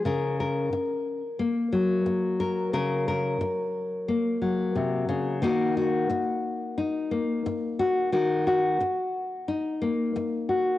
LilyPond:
\new Staff \with { instrumentName = "Nylon-string guitar" } { \time 4/4 \key ges \lydian \tempo 4 = 89 << { bes'8 bes'4. bes4. bes'8 | bes'8 bes'4. bes2 | <bes ees' ges'>8 ges'4. ees'4. ges'8 | ges'8 ges'4. ees'4. ges'8 | } \\ { des4 r4. ges4. | des4 r4. ges8 c8 des8 | ees4 r4. bes4. | ees4 r4. bes4. | } >> }